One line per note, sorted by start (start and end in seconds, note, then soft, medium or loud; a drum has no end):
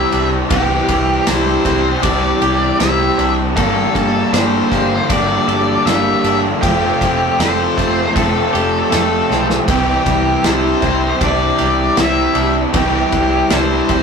0.00 0.48 C3 medium
0.00 0.50 E3 medium
0.00 0.13 G3 medium
0.00 0.11 C4 medium
0.00 0.12 D4 medium
0.00 0.51 E4 medium
0.00 0.11 G4 medium
0.00 2.41 G4 medium
0.00 0.29 E5 medium
0.11 0.40 C2 medium
0.11 0.51 G3 medium
0.11 0.50 C4 medium
0.11 1.26 D4 medium
0.11 0.52 G4 medium
0.11 ride medium
0.50 0.78 C2 medium
0.50 1.27 C3 medium
0.50 1.25 E3 medium
0.50 0.90 G3 medium
0.50 0.88 C4 medium
0.50 1.27 E4 loud
0.50 1.30 G4 medium
0.50 0.88 G4 medium
0.50 kick loud
0.50 ride medium
0.88 1.17 C2 medium
0.88 2.80 E3 medium
0.88 1.27 G3 medium
0.88 1.27 C4 medium
0.88 1.28 G4 medium
0.88 kick medium
0.88 ride medium
1.26 1.55 C2 medium
1.26 2.01 C3 medium
1.26 2.01 E3 medium
1.26 1.67 G3 medium
1.26 1.65 C4 medium
1.26 2.02 D4 medium
1.26 1.63 E4 medium
1.26 1.64 G4 medium
1.26 2.06 C5 medium
1.26 snare loud
1.26 ride medium
1.64 1.93 C2 medium
1.64 2.03 G3 medium
1.64 2.03 C4 medium
1.64 2.04 E4 medium
1.64 2.04 G4 medium
1.64 kick medium
1.64 snare soft
1.64 ride medium
2.02 2.31 C2 medium
2.02 2.80 C3 medium
2.02 2.78 E3 medium
2.02 2.43 G3 medium
2.02 2.42 C4 medium
2.02 3.17 D4 medium
2.02 2.82 E4 medium
2.02 2.41 G4 medium
2.02 2.79 D5 loud
2.02 kick loud
2.02 ride medium
2.42 2.69 C2 medium
2.42 2.80 G3 medium
2.42 2.80 C4 medium
2.42 2.81 G4 medium
2.42 ride medium
2.79 3.07 C2 medium
2.79 3.54 C3 medium
2.79 3.54 E3 medium
2.79 3.20 G3 medium
2.79 3.18 C4 medium
2.79 3.56 E4 medium
2.79 3.17 G4 medium
2.79 3.33 E5 medium
2.79 snare loud
2.79 ride medium
3.18 3.58 C2 medium
3.18 3.58 G3 medium
3.18 3.55 C4 medium
3.18 3.57 D4 medium
3.18 3.59 G4 medium
3.18 ride medium
3.57 3.84 G1 medium
3.57 4.33 G2 medium
3.57 4.34 D3 medium
3.57 3.96 G3 medium
3.57 3.94 A#3 medium
3.57 3.94 D4 medium
3.57 3.94 G4 loud
3.57 4.33 A4 loud
3.57 kick loud
3.57 ride medium
3.94 4.22 G1 medium
3.94 4.32 G3 medium
3.94 4.32 A#3 medium
3.94 4.33 D4 medium
3.94 4.35 G4 medium
3.94 kick medium
3.94 ride medium
4.32 4.60 G1 medium
4.32 5.08 D3 medium
4.32 4.73 G3 medium
4.32 4.72 A#3 medium
4.32 4.71 D4 medium
4.32 4.71 G4 medium
4.32 5.12 C5 medium
4.32 snare loud
4.32 ride medium
4.71 4.99 G1 medium
4.71 5.10 G3 medium
4.71 5.10 A#3 medium
4.71 5.10 D4 medium
4.71 5.12 G4 medium
4.71 kick medium
4.71 snare soft
4.71 ride medium
5.10 5.37 G1 medium
5.10 5.86 G2 medium
5.10 5.87 D3 medium
5.10 5.50 G3 medium
5.10 5.48 A#3 medium
5.10 5.48 D4 medium
5.10 5.47 G4 loud
5.10 5.90 D5 loud
5.10 kick loud
5.10 ride medium
5.48 5.75 G1 medium
5.48 5.87 G3 medium
5.48 5.87 A#3 medium
5.48 5.87 D4 medium
5.48 5.89 G4 medium
5.48 6.63 A4 medium
5.48 ride medium
5.85 6.13 G1 medium
5.85 6.60 D3 medium
5.85 6.28 G3 medium
5.85 6.26 A#3 medium
5.85 6.25 D4 medium
5.85 6.39 E5 medium
5.85 snare medium
5.85 ride medium
5.90 6.25 G4 medium
6.24 6.51 G1 medium
6.24 6.62 A#3 medium
6.24 6.61 D4 medium
6.24 6.65 G4 medium
6.24 ride medium
6.28 6.63 G3 medium
6.62 6.90 F1 medium
6.62 7.39 F2 medium
6.62 7.40 C3 medium
6.62 7.02 F3 medium
6.62 7.01 A3 loud
6.62 7.02 C4 medium
6.62 6.99 F4 medium
6.62 7.41 G4 medium
6.62 kick loud
6.62 ride medium
7.01 7.29 F1 medium
7.01 7.36 F3 medium
7.01 7.38 A3 medium
7.01 7.39 C4 medium
7.01 7.39 F4 medium
7.01 kick medium
7.01 ride medium
7.38 7.66 F1 medium
7.38 8.14 C3 medium
7.38 7.78 F3 medium
7.38 7.77 A3 medium
7.38 7.77 C4 medium
7.38 7.76 F4 medium
7.38 8.13 C5 medium
7.38 snare loud
7.38 ride medium
7.77 8.05 F1 medium
7.77 8.14 F3 medium
7.77 8.15 A3 medium
7.77 8.16 C4 medium
7.77 8.15 F4 medium
7.77 kick medium
7.77 ride medium
8.15 8.43 F1 medium
8.15 8.92 F2 medium
8.15 8.92 C3 medium
8.15 8.54 F3 medium
8.15 8.53 A3 medium
8.15 8.54 C4 medium
8.15 8.52 F4 medium
8.15 8.92 A4 medium
8.15 kick loud
8.15 ride medium
8.53 8.81 F1 medium
8.53 8.89 F3 medium
8.53 8.89 A3 medium
8.53 8.91 C4 medium
8.53 8.91 F4 medium
8.53 11.58 G4 medium
8.53 ride medium
8.90 9.19 F1 medium
8.90 9.66 C3 medium
8.90 9.30 F3 medium
8.90 9.29 A3 medium
8.90 9.29 C4 medium
8.90 9.28 F4 medium
8.90 9.46 A4 medium
8.90 snare medium
8.90 ride medium
9.29 9.58 B1 medium
9.29 9.67 F3 medium
9.29 9.66 A3 medium
9.29 9.69 C4 medium
9.29 9.66 F4 medium
9.29 snare medium
9.50 snare medium
9.67 9.96 C2 medium
9.67 11.19 C3 medium
9.67 10.43 E3 medium
9.67 10.07 G3 medium
9.67 10.06 C4 medium
9.67 10.05 E4 medium
9.67 10.48 G4 medium
9.67 kick loud
9.67 ride medium
10.05 10.34 C2 medium
10.05 11.98 E3 medium
10.05 10.44 G3 medium
10.05 10.44 C4 medium
10.05 10.45 E4 medium
10.05 kick medium
10.05 ride medium
10.43 10.72 C2 medium
10.43 11.21 C3 medium
10.43 11.20 E3 medium
10.43 10.83 G3 medium
10.43 10.82 C4 medium
10.43 11.21 D4 medium
10.43 10.81 E4 medium
10.43 11.23 C5 medium
10.43 snare loud
10.43 ride medium
10.81 11.10 C2 medium
10.81 11.21 G3 medium
10.81 11.21 C4 medium
10.81 11.22 E4 medium
10.81 kick medium
10.81 snare soft
10.81 ride medium
11.20 11.49 C2 medium
11.20 11.97 C3 medium
11.20 11.96 E3 medium
11.20 11.61 G3 medium
11.20 11.59 C4 loud
11.20 12.35 D4 medium
11.20 11.58 E4 medium
11.20 kick loud
11.20 ride medium
11.24 12.02 D5 medium
11.58 11.87 C2 medium
11.58 11.99 G3 medium
11.58 11.98 C4 medium
11.58 11.99 E4 medium
11.58 14.03 G4 medium
11.58 ride medium
11.97 12.25 C2 medium
11.97 12.72 C3 medium
11.97 12.72 E3 medium
11.97 12.37 G3 medium
11.97 12.35 C4 medium
11.97 12.34 E4 medium
11.97 12.53 E5 medium
11.97 snare loud
11.97 ride medium
12.35 12.63 C2 medium
12.35 12.74 G3 medium
12.35 12.73 C4 medium
12.35 13.51 D4 medium
12.35 12.74 E4 medium
12.35 ride medium
12.73 13.02 C2 medium
12.73 13.50 C3 medium
12.73 13.49 E3 medium
12.73 13.14 G3 medium
12.73 13.12 C4 loud
12.73 13.11 E4 medium
12.73 13.55 G4 medium
12.73 kick loud
12.73 ride medium
13.12 13.40 C2 medium
13.12 14.03 E3 medium
13.12 13.51 G3 medium
13.12 13.51 C4 medium
13.12 13.51 E4 medium
13.12 kick medium
13.12 ride medium
13.50 13.79 C2 medium
13.50 14.03 C3 medium
13.50 14.03 E3 medium
13.50 13.92 G3 medium
13.50 13.90 C4 medium
13.50 14.03 D4 medium
13.50 13.89 E4 medium
13.50 14.03 C5 medium
13.50 snare loud
13.50 ride medium
13.89 14.03 C2 medium
13.89 14.03 G3 medium
13.89 14.03 C4 medium
13.89 14.03 E4 medium
13.89 kick medium
13.89 ride medium